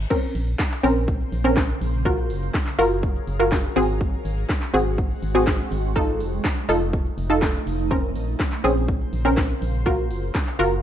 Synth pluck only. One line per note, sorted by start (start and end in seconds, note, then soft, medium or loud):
0.10 0.69 C4 medium
0.10 0.69 C#4 medium
0.10 0.69 A#4 medium
0.83 1.32 C4 medium
0.83 1.32 C#4 medium
0.83 1.32 A#4 loud
1.44 1.93 C4 medium
1.44 1.93 C#4 medium
1.44 1.93 A#4 loud
2.05 2.64 F4 medium
2.05 2.64 F#4 medium
2.05 2.64 A#4 loud
2.79 3.27 F4 loud
2.79 3.27 F#4 medium
2.79 3.27 A#4 loud
3.40 3.76 F4 medium
3.40 3.75 F#4 medium
3.40 3.76 A#4 loud
3.76 4.54 C4 loud
3.76 4.54 F#4 medium
3.76 4.54 G#4 loud
4.74 5.22 C4 medium
4.74 5.22 F#4 medium
4.74 5.23 G#4 loud
5.35 5.83 C4 medium
5.35 5.83 F#4 medium
5.35 5.84 G#4 loud
5.96 6.54 D#4 loud
5.96 6.54 F4 medium
5.96 6.54 A4 loud
6.69 7.17 D#4 loud
6.69 7.18 F4 medium
6.69 7.18 A4 loud
7.30 7.78 D#4 medium
7.30 7.79 F4 medium
7.30 7.79 A4 loud
7.91 8.49 C4 medium
7.91 8.49 C#4 medium
7.91 8.49 A#4 medium
8.64 9.13 C4 medium
8.64 9.13 C#4 medium
8.64 9.13 G#4 loud
9.25 9.74 C4 loud
9.25 9.74 C#4 medium
9.25 9.74 A#4 loud
9.86 10.44 F4 medium
9.86 10.44 F#4 medium
9.86 10.44 A#4 loud
10.59 10.82 F4 loud
10.59 10.82 F#4 medium
10.59 10.82 A#4 loud